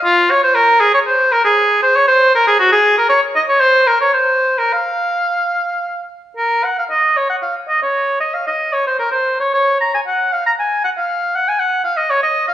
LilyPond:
\new Staff \with { instrumentName = "Oboe" } { \time 3/4 \key f \phrygian \tempo 4 = 116 f'8 des''16 c''16 bes'8 aes'16 des''16 c''8 bes'16 aes'16~ | aes'8 c''16 des''16 c''8 bes'16 aes'16 ges'16 aes'8 bes'16 | des''8 ees''16 des''16 c''8 bes'16 des''16 c''8. bes'16 | f''2~ f''8 r8 |
bes'8 ges''16 f''16 ees''8 des''16 ges''16 f''8 ees''16 des''16~ | des''8 ees''16 f''16 ees''8 des''16 c''16 bes'16 c''8 des''16 | des''8 bes''16 aes''16 ges''8 f''16 bes''16 aes''8 ges''16 f''16~ | f''8 ges''16 aes''16 ges''8 f''16 ees''16 des''16 ees''8 f''16 | }